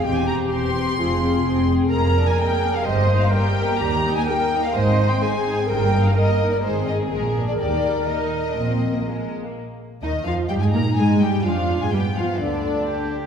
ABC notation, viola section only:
X:1
M:4/4
L:1/16
Q:1/4=127
K:Eb
V:1 name="Viola section"
G8 F4 A4 | B8 c4 B4 | G4 B4 c4 A4 | B4 B4 A8 |
B12- B2 z2 | z4 E,2 F,2 G, A, B,2 A,2 G,2 | F,3 A, G,2 F,2 D,6 z2 |]